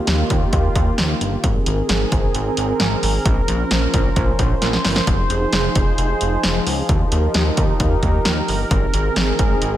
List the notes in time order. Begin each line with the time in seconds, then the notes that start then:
Already playing: D#3 A#3 F4 G4
0.07 D#2, snare, closed hi-hat
0.30 D#2, kick, closed hi-hat
0.53 D#2, kick, closed hi-hat
0.75 D#2, kick, closed hi-hat
0.98 D#2, snare, closed hi-hat
1.21 G1, closed hi-hat
1.44 G#1 C4 G#4 A#4, kick, closed hi-hat
1.66 G#1, closed hi-hat
1.89 G#1, snare, closed hi-hat
2.12 G#1, kick, closed hi-hat
2.35 G#1, closed hi-hat
2.57 G#1, closed hi-hat
2.80 G#1, snare, closed hi-hat
3.03 G#1, open hi-hat
3.25 A#1 F3 C#4 C5, kick, closed hi-hat
3.48 A#1, closed hi-hat
3.71 A#1, snare, closed hi-hat
3.94 A#1, kick, closed hi-hat
4.16 A#1, kick, closed hi-hat
4.39 A#1, kick, closed hi-hat
4.62 A#1, snare, closed hi-hat
4.73 snare
4.85 G1, snare, open hi-hat
4.96 snare
5.07 F1 F3 D#4 G#4, kick, closed hi-hat
5.30 F1, closed hi-hat
5.53 F1, snare, closed hi-hat
5.75 F1, kick, closed hi-hat
5.98 F1, closed hi-hat
6.21 F1, closed hi-hat
6.43 F1, snare, closed hi-hat
6.66 C#2, open hi-hat
6.89 D#2 D#4 G4 A#4, kick, closed hi-hat
7.12 D#2, closed hi-hat
7.34 D#2, snare, closed hi-hat
7.57 D#2, kick, closed hi-hat
7.80 D#2, kick, closed hi-hat
8.03 D#2, kick, closed hi-hat
8.25 D#2, snare, closed hi-hat
8.48 G1, open hi-hat
8.71 G#1 D#3 C4 G#4, kick, closed hi-hat
8.94 G#1, closed hi-hat
9.16 G#1, snare, closed hi-hat
9.39 G#1, kick, closed hi-hat
9.62 G#1, closed hi-hat